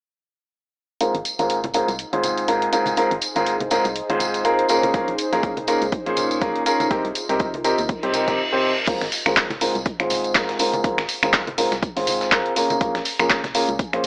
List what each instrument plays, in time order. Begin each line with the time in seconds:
1.01 upright piano G#2 C4 F4 G#4 A#4, ambient pad D#4, closed hi-hat, tambourine
1.15 fm bass G#1, closed hi-hat
1.25 closed hi-hat, tambourine
1.31 ambient pad G#4
1.39 fm bass G#1, upright piano G#2 C4 F4 G#4 A#4, closed hi-hat, tambourine
1.50 closed hi-hat, tambourine
1.54 ambient pad C5
1.64 closed hi-hat, high conga
1.74 upright piano G#2 C4 F4 G#4 A#4, closed hi-hat, tambourine
1.88 fm bass C2, closed hi-hat, tambourine
1.99 closed hi-hat, tambourine
2.13 fm bass G#1, upright piano G#2 C4 F4 G#4 C5, closed hi-hat
2.23 closed hi-hat, tambourine, high conga
2.38 closed hi-hat, tambourine
2.48 upright piano G#2 C4 F4 G#4 A#4, closed hi-hat, tambourine
2.62 closed hi-hat
2.73 upright piano G#2 C4 F4 G#4 A#4, closed hi-hat, tambourine
2.86 closed hi-hat, tambourine, high conga
2.96 upright piano G#2 C4 F4 G#4 A#4, closed hi-hat, tambourine
3.11 fm bass G#1, closed hi-hat
3.21 closed hi-hat, tambourine
3.35 fm bass G#1, upright piano G#2 C4 F4 G#4 A#4, closed hi-hat, tambourine
3.46 closed hi-hat, tambourine
3.60 closed hi-hat, high conga
3.70 upright piano G#2 C4 F4 G#4 A#4, closed hi-hat, tambourine
3.84 fm bass C2, closed hi-hat, tambourine
3.96 closed hi-hat, tambourine
4.10 fm bass G#1, upright piano G#2 C4 F4 G#4 C5, closed hi-hat
4.20 closed hi-hat, tambourine, high conga
4.34 closed hi-hat, tambourine
4.45 upright piano C4 F4 G#4 A#4, closed hi-hat, tambourine
4.59 closed hi-hat
4.69 upright piano A#2 C#4 F4 G#4 A#4, closed hi-hat, tambourine
4.83 closed hi-hat, tambourine, high conga
4.94 upright piano A#2 C#4 F4 G#4 A#4, kick, closed hi-hat, tambourine
5.08 fm bass A#1, closed hi-hat
5.18 closed hi-hat, tambourine
5.33 fm bass A#1, upright piano A#2 C#4 F4 G#4 A#4, closed hi-hat, tambourine
5.43 kick, closed hi-hat, tambourine
5.57 closed hi-hat, high conga
5.67 upright piano A#2 C#4 F4 G#4 A#4, closed hi-hat, tambourine
5.81 fm bass C#2, closed hi-hat, tambourine
5.92 kick, closed hi-hat, tambourine
6.06 fm bass A#1, upright piano A#2 C#4 F4 G#4 C5, closed hi-hat
6.17 closed hi-hat, tambourine, high conga
6.31 closed hi-hat, tambourine
6.41 upright piano A#2 C#4 F4 G#4 A#4, kick, closed hi-hat, tambourine
6.56 closed hi-hat
6.66 upright piano C#4 F4 G#4 A#4, closed hi-hat, tambourine
6.80 closed hi-hat, tambourine, high conga
6.91 upright piano C3 C4 D#4 G4 A#4, ambient pad F4, kick, closed hi-hat
7.05 fm bass C2, closed hi-hat
7.12 ambient pad A#4, closed hi-hat, tambourine
7.29 fm bass C2, upright piano C3 C4 D#4 G4 A#4, closed hi-hat, tambourine
7.39 kick, closed hi-hat, tambourine
7.54 closed hi-hat, high conga
7.64 upright piano C3 C4 D#4 G4 A#4, closed hi-hat, tambourine
7.78 fm bass D#2, ambient pad D#5, closed hi-hat, tambourine
7.89 kick, closed hi-hat, tambourine, reverse cymbal
8.03 fm bass C2, upright piano C3 C4 D#4 G4 C5, closed hi-hat
8.14 upright piano C3 C4 D#4 G4 A#4, closed hi-hat, tambourine, high conga
8.28 upright piano C3 C4 D#4 G4 A#4, kick, closed hi-hat, tambourine
8.52 upright piano C3 C4 D#4 G4 C5
8.86 upright piano G#2 C4 F4 G#4 A#4, kick, closed hi-hat, crash, tambourine
9.01 fm bass G#1, snare, closed hi-hat
9.12 open hi-hat, tambourine
9.26 fm bass G#1, upright piano G#2 C4 F4 G#4 A#4, finger snap, closed hi-hat, tambourine
9.37 kick, snare, clap, closed hi-hat
9.50 snare, closed hi-hat, high conga
9.61 upright piano G#2 C4 F4 G#4 A#4, closed hi-hat, open hi-hat, tambourine
9.75 fm bass C2, closed hi-hat, tambourine
9.86 kick, closed hi-hat
10.00 fm bass G#1, upright piano G#2 C4 F4 G#4 C5, finger snap, closed hi-hat
10.10 closed hi-hat, open hi-hat, tambourine, high conga
10.24 closed hi-hat, tambourine
10.35 upright piano G#2 C4 F4 G#4 A#4, kick, snare, clap, closed hi-hat, tambourine
10.49 snare, closed hi-hat
10.59 upright piano G#2 C4 F4 G#4 A#4, closed hi-hat, open hi-hat, tambourine
10.73 closed hi-hat, tambourine, high conga
10.84 upright piano G#2 C4 F4 G#4 A#4, kick, closed hi-hat, tambourine
10.98 fm bass G#1, finger snap, snare, closed hi-hat
11.09 closed hi-hat, open hi-hat, tambourine
11.23 fm bass G#1, upright piano G#2 C4 F4 G#4 A#4, finger snap, closed hi-hat, tambourine
11.33 kick, snare, clap, closed hi-hat
11.47 closed hi-hat, high conga
11.58 upright piano G#2 C4 F4 G#4 A#4, closed hi-hat, open hi-hat, tambourine
11.72 fm bass C2, snare, closed hi-hat, tambourine
11.83 kick, closed hi-hat, tambourine
11.96 fm bass G#1, upright piano G#2 C4 F4 G#4 C5, closed hi-hat, open hi-hat
12.07 closed hi-hat, open hi-hat, tambourine, high conga
12.21 snare, closed hi-hat, tambourine
12.32 upright piano C4 F4 G#4 A#4, kick, snare, clap, closed hi-hat, tambourine
12.46 closed hi-hat
12.56 upright piano A#2 C#4 F4 G#4 A#4, closed hi-hat, open hi-hat, tambourine
12.70 closed hi-hat, tambourine, high conga
12.81 upright piano A#2 C#4 F4 G#4 A#4, kick, closed hi-hat, tambourine
12.95 fm bass A#1, snare, closed hi-hat
13.05 open hi-hat, tambourine
13.19 fm bass A#1, upright piano A#2 C#4 F4 G#4 A#4, finger snap, closed hi-hat, tambourine
13.29 kick, snare, clap, closed hi-hat, tambourine
13.44 snare, closed hi-hat, high conga
13.55 upright piano A#2 C#4 F4 G#4 A#4, ambient pad G#5, closed hi-hat, open hi-hat, tambourine
13.69 fm bass C#2, closed hi-hat, tambourine
13.79 kick, closed hi-hat, tambourine
13.93 fm bass A#1, upright piano A#2 C#4 F4 G#4 C5, finger snap, closed hi-hat